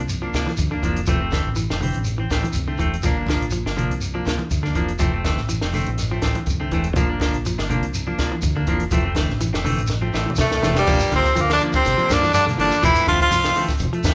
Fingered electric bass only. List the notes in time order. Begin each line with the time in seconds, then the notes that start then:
Already playing: C2
0.34 C2
0.58 D2
0.83 F1
1.08 F1
1.45 A1
1.70 F1
1.94 A1
2.30 A1
2.55 C2
2.79 E1
3.04 G1
3.41 A#1
3.66 G1
3.90 C2
4.27 C2
4.51 D2
4.75 F1
5.00 F1
5.37 A1
5.63 F1
5.87 A1
6.22 A1
6.47 C2
6.71 E1
6.96 G1
7.33 A#1
7.58 G1
7.81 C2
8.19 C2
8.43 D2
8.67 F1
8.91 F1
9.29 A1
9.53 F1
9.78 A1
10.14 A1
10.38 C2
10.64 E1
10.87 G1
11.12 G1
11.37 D2
11.85 G1
11.99 muted fingered electric bass stroke
12.10 G2
12.34 G2
12.59 G1
12.83 F1
13.07 F1
13.31 C2
13.80 F1
14.04 F2